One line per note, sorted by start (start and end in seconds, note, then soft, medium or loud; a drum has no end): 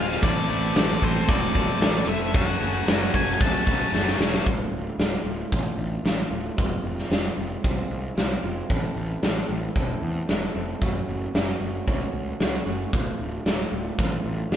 0.00 0.16 D1 medium
0.00 0.20 F3 medium
0.00 0.20 G#3 medium
0.00 0.21 C4 medium
0.00 0.21 F4 medium
0.00 0.23 F5 medium
0.10 snare soft
0.21 0.43 A1 medium
0.21 0.74 A2 loud
0.21 0.75 E3 medium
0.21 0.51 A3 loud
0.21 0.49 C4 loud
0.21 0.48 E4 loud
0.21 0.48 A4 loud
0.21 0.76 D5 medium
0.21 kick loud
0.21 open hi-hat medium
0.48 0.69 A1 medium
0.48 0.73 A3 medium
0.48 0.74 C4 medium
0.48 0.75 E4 medium
0.48 0.76 A4 medium
0.74 0.96 A1 medium
0.74 1.27 A2 medium
0.74 1.28 E3 loud
0.74 1.03 A3 medium
0.74 1.02 C4 medium
0.74 1.01 E4 medium
0.74 1.00 A4 medium
0.74 1.03 D5 medium
0.74 snare loud
0.74 open hi-hat medium
1.00 1.23 A1 medium
1.00 1.28 A3 medium
1.00 1.28 C4 medium
1.00 1.29 E4 medium
1.00 1.30 A4 medium
1.00 1.30 C5 medium
1.00 kick medium
1.27 1.70 E1 medium
1.27 1.80 A2 loud
1.27 1.81 E3 loud
1.27 1.57 A3 medium
1.27 1.55 C4 medium
1.27 1.54 E4 medium
1.27 1.54 A4 medium
1.27 2.09 D5 medium
1.27 kick loud
1.27 open hi-hat medium
1.54 1.80 A3 medium
1.54 1.80 C4 medium
1.54 1.81 E4 medium
1.54 1.83 A4 medium
1.54 kick medium
1.80 2.01 A1 medium
1.80 2.34 A3 medium
1.80 2.32 C4 medium
1.80 2.33 E4 medium
1.80 2.36 A4 medium
1.80 snare loud
1.80 open hi-hat medium
2.07 2.34 F1 medium
2.07 2.35 E5 medium
2.33 2.55 F#1 medium
2.33 2.86 F#2 loud
2.33 2.87 C#3 loud
2.33 2.62 F#3 loud
2.33 2.61 A3 loud
2.33 2.60 C#4 medium
2.33 2.59 F#4 loud
2.33 3.10 F#5 loud
2.33 kick loud
2.33 open hi-hat medium
2.60 2.81 F#1 medium
2.60 2.85 F#3 medium
2.60 2.87 A3 medium
2.60 2.88 C#4 medium
2.60 2.89 F#4 medium
2.85 3.07 F#1 medium
2.85 3.38 F#2 medium
2.85 3.39 C#3 medium
2.85 3.16 F#3 medium
2.85 3.15 A3 medium
2.85 snare loud
2.85 open hi-hat medium
2.89 3.14 C#4 medium
2.89 3.13 F#4 medium
3.01 snare soft
3.14 3.34 F#1 loud
3.14 3.40 F#3 medium
3.14 3.40 A3 medium
3.14 3.41 C#4 medium
3.14 3.42 F#4 medium
3.14 3.33 G#5 loud
3.14 kick medium
3.34 3.40 G#5 medium
3.40 3.82 C#2 loud
3.40 3.92 F#2 medium
3.40 3.93 C#3 medium
3.40 3.68 F#3 medium
3.40 3.67 A3 medium
3.40 3.66 C#4 loud
3.40 3.65 F#4 loud
3.40 4.16 A5 medium
3.40 kick loud
3.40 open hi-hat medium
3.66 3.90 F#3 medium
3.66 3.92 A3 medium
3.66 3.93 C#4 medium
3.66 3.94 F#4 medium
3.66 kick medium
3.92 4.13 F#1 medium
3.92 4.43 F#3 medium
3.92 4.44 A3 medium
3.92 4.45 C#4 medium
3.92 4.45 F#4 medium
3.92 snare medium
4.07 snare medium
4.19 4.39 E1 medium
4.19 snare loud
4.34 snare loud
4.46 4.64 D1 medium
4.46 4.97 D2 medium
4.46 4.97 A2 medium
4.46 4.98 D3 medium
4.46 4.98 A3 medium
4.46 5.00 F4 medium
4.46 kick loud
4.46 open hi-hat soft
4.72 4.90 D1 medium
4.98 5.17 D1 medium
4.98 5.51 D2 medium
4.98 5.50 A2 medium
4.98 5.26 D3 medium
4.98 5.25 A3 medium
4.98 5.24 F4 medium
4.98 snare medium
4.98 open hi-hat soft
5.24 5.43 D1 medium
5.24 5.51 D3 soft
5.24 5.52 A3 medium
5.24 5.53 F4 medium
5.51 5.70 A1 medium
5.51 6.03 A2 medium
5.51 6.04 D3 medium
5.51 6.04 A3 medium
5.51 6.05 F4 medium
5.51 kick medium
5.51 open hi-hat soft
5.78 5.96 A1 medium
6.04 6.23 A1 medium
6.04 6.56 A2 medium
6.04 6.32 D3 medium
6.04 6.30 A3 medium
6.04 6.29 F4 medium
6.04 snare loud
6.04 open hi-hat soft
6.30 6.49 D1 medium
6.30 6.57 D3 medium
6.30 6.56 A3 medium
6.30 6.55 F4 medium
6.56 6.76 F1 medium
6.56 7.08 F2 medium
6.56 7.09 C3 medium
6.56 7.09 F3 medium
6.56 7.09 G#3 medium
6.56 7.11 C4 medium
6.56 7.10 F4 medium
6.56 kick loud
6.56 open hi-hat soft
6.84 7.02 F1 medium
6.98 snare soft
7.09 7.29 F1 medium
7.09 7.63 F2 medium
7.09 7.63 C3 medium
7.09 7.38 F3 medium
7.09 7.37 G#3 medium
7.09 7.37 C4 medium
7.09 7.35 F4 medium
7.09 snare loud
7.09 open hi-hat soft
7.36 7.56 F1 medium
7.36 7.61 F3 soft
7.36 7.62 G#3 medium
7.36 7.63 C4 medium
7.36 7.64 F4 medium
7.63 7.82 C2 medium
7.63 8.14 F3 medium
7.63 8.15 G#3 medium
7.63 8.16 C4 medium
7.63 8.16 F4 medium
7.63 kick loud
7.63 open hi-hat soft
7.90 8.09 C2 medium
8.15 8.35 C2 medium
8.15 8.44 F3 medium
8.15 8.43 G#3 medium
8.15 8.42 C4 medium
8.15 8.41 F4 medium
8.15 snare medium
8.15 open hi-hat soft
8.43 8.62 F1 medium
8.43 8.69 F3 medium
8.43 8.68 G#3 medium
8.43 8.68 C4 medium
8.43 8.68 F4 medium
8.69 8.88 A1 medium
8.69 9.21 A2 medium
8.69 9.21 E3 medium
8.69 9.23 A3 medium
8.69 9.22 C4 medium
8.69 9.23 E4 loud
8.69 9.24 A4 medium
8.69 kick loud
8.69 open hi-hat medium
8.96 9.15 A1 medium
9.22 9.41 A1 medium
9.22 9.75 A2 medium
9.22 9.75 E3 medium
9.22 9.51 A3 medium
9.22 9.49 C4 medium
9.22 9.49 E4 medium
9.22 9.48 A4 medium
9.22 snare medium
9.22 open hi-hat soft
9.49 9.68 A1 medium
9.49 9.74 A3 soft
9.49 9.74 C4 medium
9.49 9.75 E4 medium
9.49 9.77 A4 medium
9.75 9.94 E1 medium
9.75 10.27 A3 medium
9.75 10.27 C4 medium
9.75 10.28 E4 medium
9.75 10.29 A4 medium
9.75 kick loud
9.75 open hi-hat soft
10.02 10.21 E2 medium
10.28 10.47 E1 medium
10.28 10.56 A3 medium
10.28 10.55 C4 medium
10.28 10.54 E4 medium
10.28 10.54 A4 medium
10.28 snare medium
10.28 open hi-hat soft
10.54 10.74 F1 medium
10.54 10.81 A3 medium
10.54 10.80 C4 medium
10.54 10.80 E4 medium
10.54 10.82 A4 medium
10.81 11.00 F#1 medium
10.81 11.32 F#2 medium
10.81 11.33 C#3 medium
10.81 11.33 F#3 medium
10.81 11.34 A3 medium
10.81 11.34 C#4 loud
10.81 11.34 F#4 medium
10.81 kick loud
10.81 open hi-hat soft
11.08 11.26 F#1 medium
11.33 11.53 F#1 medium
11.33 11.87 F#2 medium
11.33 11.87 C#3 medium
11.33 11.61 F#3 medium
11.33 11.61 A3 medium
11.33 11.59 C#4 medium
11.33 11.58 F#4 medium
11.33 snare loud
11.33 open hi-hat soft
11.60 11.79 F#1 medium
11.60 11.85 F#3 medium
11.60 11.86 A3 medium
11.60 11.87 C#4 medium
11.60 11.87 F#4 medium
11.86 12.06 C#2 medium
11.86 12.38 F#3 medium
11.86 12.39 A3 medium
11.86 12.40 C#4 medium
11.86 12.41 F#4 medium
11.86 kick loud
11.86 open hi-hat medium
12.14 12.32 C#2 medium
12.40 12.58 C#2 medium
12.40 12.67 F#3 medium
12.40 12.66 A3 medium
12.40 12.65 C#4 medium
12.40 12.64 F#4 medium
12.40 snare loud
12.40 open hi-hat soft
12.65 12.85 F#1 medium
12.65 12.92 F#3 medium
12.65 12.92 A3 medium
12.65 12.91 C#4 medium
12.65 12.91 F#4 medium
12.92 13.11 D1 medium
12.92 13.43 D2 medium
12.92 13.44 A2 medium
12.92 13.44 D3 medium
12.92 13.45 A3 medium
12.92 13.46 F4 medium
12.92 kick loud
12.92 open hi-hat medium
13.19 13.38 D1 medium
13.44 13.64 D1 medium
13.44 13.98 D2 medium
13.44 13.96 A2 medium
13.44 13.73 D3 medium
13.44 13.72 A3 medium
13.44 13.71 F4 medium
13.44 snare medium
13.44 open hi-hat soft
13.72 13.90 D1 medium
13.72 13.98 D3 soft
13.72 13.98 A3 medium
13.72 13.98 F4 medium
13.97 14.17 A1 medium
13.97 14.49 A2 medium
13.97 14.50 D3 medium
13.97 14.51 A3 medium
13.97 14.52 F4 medium
13.97 kick loud
13.97 open hi-hat soft
14.24 14.43 A1 medium
14.51 14.56 A1 medium
14.51 14.56 A2 medium
14.51 14.56 D3 medium
14.51 14.56 A3 medium
14.51 14.56 F4 medium
14.51 snare medium
14.51 open hi-hat soft